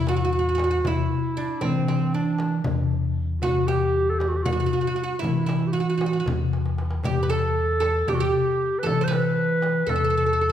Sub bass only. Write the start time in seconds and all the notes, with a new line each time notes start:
Already playing: E2
0.84 E2
1.62 E3
2.66 E2
3.43 E2
4.45 E2
5.22 E3
6.26 E2
7.03 E2
8.05 E2
8.84 E3
9.87 E2